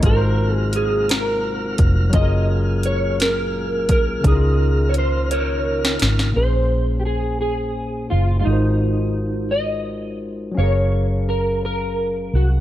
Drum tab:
HH |x---x-x---x-|x---x-x---x-|x---x-x---x-|------------|
SD |------o-----|------o-----|---------ooo|------------|
BD |o---------o-|o---------o-|o-----------|------------|

HH |------------|------------|
SD |------------|------------|
BD |------------|------------|